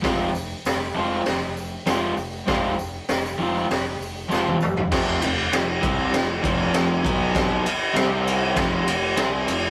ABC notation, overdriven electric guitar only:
X:1
M:4/4
L:1/8
Q:1/4=99
K:Fm
V:1 name="Overdriven electric guitar" clef=bass
[F,,C,F,A,CF] z2 [F,,C,F,A,CF] z2 [F,,C,F,A,CF] z | [F,,C,F,A,CF] z2 [F,,C,F,A,CF] z2 [F,,C,F,A,CF] z | [F,,C,F,] [F,,C,] [F,,C,] [C,G,C] [F,,C,] [F,,C,F,]2 [=B,,^F,=B,]- | [=B,,^F,=B,] z [C,G,C]2 [=F,,C,=F,] [F,,C,] [C,G,C] [F,,C,] |]